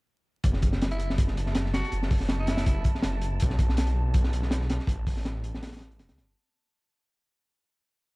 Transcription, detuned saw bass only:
0, 0, Header, 1, 2, 480
1, 0, Start_track
1, 0, Key_signature, 3, "minor"
1, 0, Tempo, 370370
1, 572, Time_signature, 4, 2, 24, 8
1, 10564, End_track
2, 0, Start_track
2, 0, Title_t, "Detuned saw bass"
2, 0, Program_c, 0, 39
2, 572, Note_on_c, 0, 30, 101
2, 1399, Note_off_c, 0, 30, 0
2, 1419, Note_on_c, 0, 30, 79
2, 1754, Note_off_c, 0, 30, 0
2, 1774, Note_on_c, 0, 30, 83
2, 2235, Note_off_c, 0, 30, 0
2, 2253, Note_on_c, 0, 30, 87
2, 2368, Note_off_c, 0, 30, 0
2, 2495, Note_on_c, 0, 30, 98
2, 3321, Note_off_c, 0, 30, 0
2, 3341, Note_on_c, 0, 30, 82
2, 3675, Note_off_c, 0, 30, 0
2, 3933, Note_on_c, 0, 30, 84
2, 4395, Note_off_c, 0, 30, 0
2, 4438, Note_on_c, 0, 35, 99
2, 5252, Note_off_c, 0, 35, 0
2, 5257, Note_on_c, 0, 35, 83
2, 5593, Note_off_c, 0, 35, 0
2, 5609, Note_on_c, 0, 35, 85
2, 6073, Note_off_c, 0, 35, 0
2, 6089, Note_on_c, 0, 35, 84
2, 6205, Note_off_c, 0, 35, 0
2, 6317, Note_on_c, 0, 33, 104
2, 7152, Note_off_c, 0, 33, 0
2, 7178, Note_on_c, 0, 33, 83
2, 7770, Note_on_c, 0, 28, 86
2, 7790, Note_off_c, 0, 33, 0
2, 7899, Note_on_c, 0, 38, 89
2, 7919, Note_off_c, 0, 28, 0
2, 8013, Note_on_c, 0, 31, 81
2, 8032, Note_off_c, 0, 38, 0
2, 8230, Note_off_c, 0, 31, 0
2, 10564, End_track
0, 0, End_of_file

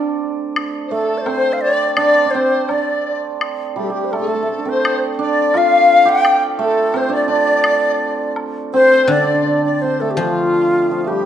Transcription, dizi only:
0, 0, Header, 1, 2, 480
1, 0, Start_track
1, 0, Tempo, 706714
1, 383, Time_signature, 2, 2, 24, 8
1, 5191, Tempo, 722022
1, 7593, End_track
2, 0, Start_track
2, 0, Title_t, "Dizi"
2, 0, Program_c, 0, 73
2, 588, Note_on_c, 0, 72, 58
2, 619, Note_on_c, 0, 69, 83
2, 629, Note_off_c, 0, 72, 0
2, 860, Note_on_c, 0, 72, 85
2, 870, Note_off_c, 0, 69, 0
2, 1097, Note_off_c, 0, 72, 0
2, 1102, Note_on_c, 0, 74, 94
2, 1324, Note_off_c, 0, 74, 0
2, 1348, Note_on_c, 0, 74, 99
2, 1588, Note_on_c, 0, 72, 84
2, 1598, Note_off_c, 0, 74, 0
2, 1842, Note_on_c, 0, 74, 70
2, 1852, Note_off_c, 0, 72, 0
2, 2200, Note_off_c, 0, 74, 0
2, 2557, Note_on_c, 0, 67, 72
2, 2645, Note_off_c, 0, 67, 0
2, 2662, Note_on_c, 0, 67, 69
2, 2824, Note_on_c, 0, 69, 77
2, 2834, Note_off_c, 0, 67, 0
2, 3176, Note_off_c, 0, 69, 0
2, 3181, Note_on_c, 0, 72, 85
2, 3396, Note_off_c, 0, 72, 0
2, 3536, Note_on_c, 0, 74, 93
2, 3779, Note_on_c, 0, 77, 99
2, 3790, Note_off_c, 0, 74, 0
2, 4138, Note_on_c, 0, 79, 105
2, 4148, Note_off_c, 0, 77, 0
2, 4366, Note_off_c, 0, 79, 0
2, 4481, Note_on_c, 0, 69, 89
2, 4730, Note_on_c, 0, 72, 84
2, 4740, Note_off_c, 0, 69, 0
2, 4842, Note_on_c, 0, 74, 94
2, 4852, Note_off_c, 0, 72, 0
2, 4937, Note_off_c, 0, 74, 0
2, 4941, Note_on_c, 0, 74, 86
2, 5637, Note_off_c, 0, 74, 0
2, 5915, Note_on_c, 0, 72, 99
2, 6161, Note_on_c, 0, 74, 79
2, 6171, Note_off_c, 0, 72, 0
2, 6519, Note_off_c, 0, 74, 0
2, 6523, Note_on_c, 0, 74, 72
2, 6645, Note_on_c, 0, 72, 63
2, 6655, Note_off_c, 0, 74, 0
2, 6768, Note_on_c, 0, 69, 62
2, 6778, Note_off_c, 0, 72, 0
2, 6850, Note_on_c, 0, 67, 48
2, 6860, Note_off_c, 0, 69, 0
2, 6892, Note_on_c, 0, 65, 73
2, 6902, Note_off_c, 0, 67, 0
2, 7447, Note_off_c, 0, 65, 0
2, 7451, Note_on_c, 0, 69, 49
2, 7479, Note_on_c, 0, 67, 68
2, 7489, Note_off_c, 0, 69, 0
2, 7593, Note_off_c, 0, 67, 0
2, 7593, End_track
0, 0, End_of_file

